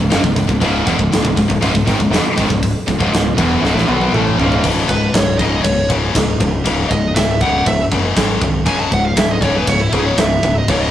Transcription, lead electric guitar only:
4.88 B4
5.14 C#5
5.38 D#5
5.63 C#5
6.89 D#5
7.15 E5
7.41 F#5
7.67 E5
8.66 G#5
8.79 A5
8.93 F#5
9.05 F5
9.18 E5
9.31 D#5
9.43 C#5
9.57 B4
9.68 C#5
9.80 E4
9.93 G#4
10.06 C#5
10.18 E5
10.58 D#5
10.69 C#5
10.80 D#5

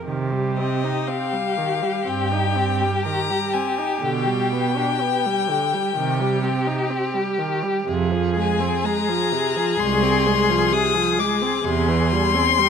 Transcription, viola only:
0.06 D#3
0.32 G3
0.58 C4
0.83 D#4
1.08 C4
1.33 G3
1.57 D#3
1.82 G3
2.07 C4
2.31 D#4
2.56 C4
2.81 G3
3.05 D#3
3.30 G3
3.54 C4
3.78 D#4
4.03 D3
4.27 G3
4.52 B3
4.77 D4
5.01 B3
5.26 G3
5.50 D3
5.73 G3
5.96 D#3
6.20 G3
6.43 C4
6.66 D#4
6.90 C4
7.14 G3
7.38 D#3
7.63 G3
7.87 C3
8.12 F3
8.36 G#3
8.59 C4
8.84 G#3
9.09 F3
9.32 C3
9.56 F3
9.79 G#3
10.02 C4
10.26 G#3
10.50 F3
10.72 C3
10.95 F3
11.19 G#3
11.41 C4
11.65 C3
11.88 E3
12.12 G3
12.34 C4
12.58 G3

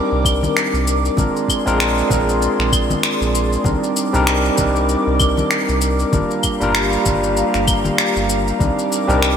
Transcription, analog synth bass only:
0.12 C2
0.74 C2
1.17 A#1
1.67 A#1
2.10 A#1
2.59 A#1
3.21 A#1
3.65 C2
4.14 C2
4.58 C2
5.07 C2
5.69 C2
6.13 G1
6.61 G1
7.06 G1
7.55 G1
8.16 G1
8.60 C2
9.09 C2

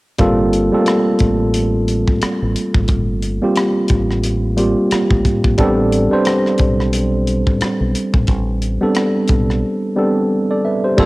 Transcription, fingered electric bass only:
0.20 G1
0.73 muted fingered electric bass stroke
1.21 A1
2.22 muted fingered electric bass stroke
2.42 A1
2.75 G#1
2.89 G1
3.43 muted fingered electric bass stroke
3.90 A1
4.92 muted fingered electric bass stroke
5.11 A1
5.45 A#1
5.59 A1
6.12 muted fingered electric bass stroke
6.60 B1
7.61 muted fingered electric bass stroke
7.81 B1
8.14 A#1
8.28 A1
8.82 muted fingered electric bass stroke
9.30 B1
10.98 G1

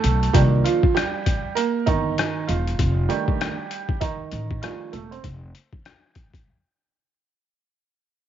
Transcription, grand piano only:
Already playing: A3 A4
0.33 D#3 F3 G3 A#3 D4 G4
0.64 F3 F4
0.95 G3 G4
1.55 A#3 A#4
1.86 D#3 D#4
2.47 F3 F4
3.09 D#3 G3 A3 D4 G4
4.01 D#3 D#4
4.62 D#3 F3 G3 A3 D4 F4
4.92 A3 A4
5.11 C4 C5

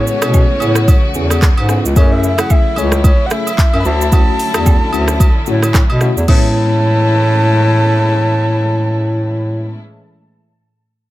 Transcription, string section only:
Already playing: C#3 E3 G#3 A3 F#4
1.96 F#3 E4
3.85 D3 C#4
6.28 A2 E3 G#3 C#4 E4

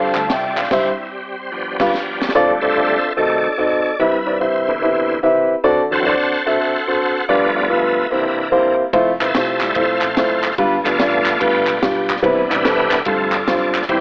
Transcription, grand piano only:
Already playing: G2 D4 G4 A4 C5 F5
0.16 F5 A5
0.30 E5 G5
0.57 D5 F5
0.71 G2 G4 C5 E5
1.79 G2 D4 F4 G4 B4 F5
2.35 C4 D4 F4 A4 D5
2.62 C4 D4 F4 A4 D5
2.76 C4 D4 F4 A4 D5
3.17 C4 D#4 F#4 A4 D#5
3.58 C4 D#4 F#4 A4 D#5
3.99 G2 C4 E4 G4 B4 E5
4.26 C4 E4 G4 B4 D5
4.40 C4 E4 G4 B4 E5
4.82 C4 E4 G4 B4 E5
5.23 C4 E4 G4 B4 E5
5.64 D3 C4 D4 F#4 A4 D5
5.91 C4 D4 F#4 A4 C5
6.06 C4 D4 F#4 A4 D5
6.46 C4 D4 F#4 A4 E5
6.87 C4 D4 F#4 A4 C5
7.29 G2 B3 D4 F4 G4 D5
7.56 B3 D4 F4 G4 D5
7.70 B3 D4 F4 G4 B4
8.11 C3 A#3 C4 E4 G4 C5
8.52 A#3 C4 E4 G4 C5
8.93 A3 C4 E4 F4 C5
9.20 A3 C4 E4 F4 B4
9.35 A3 C4 E4 F4 G4
9.75 A3 C4 E4 F4 C5
10.16 A3 C4 E4 F4 C5
10.58 G2 G3 B3 D4 F4 B4
10.85 G3 B3 D4 F4 B4
10.99 G3 B3 D4 F4 D5
11.40 G3 B3 D4 F4 B4
11.81 G3 B3 D4 F4 G4
12.22 C3 G3 B3 C4 E4 B4
12.50 G3 B3 C4 E4 D5
12.64 G3 B3 C4 E4 A4
13.05 G2 G3 C4 D4 F4 A4
13.47 G3 C4 D4 F4 C5
13.89 G2 C4 E4 G4

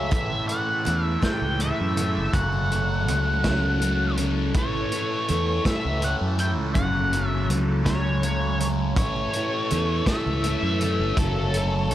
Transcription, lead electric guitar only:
Already playing: E5
0.48 F#5
1.05 E5
1.24 G5
1.61 E5
2.34 F#5
4.57 C#5
5.66 E5
6.04 F#5
6.40 G5
6.74 F#5
7.26 E5
7.86 C#5
8.98 C#5
10.07 E5
11.19 A4

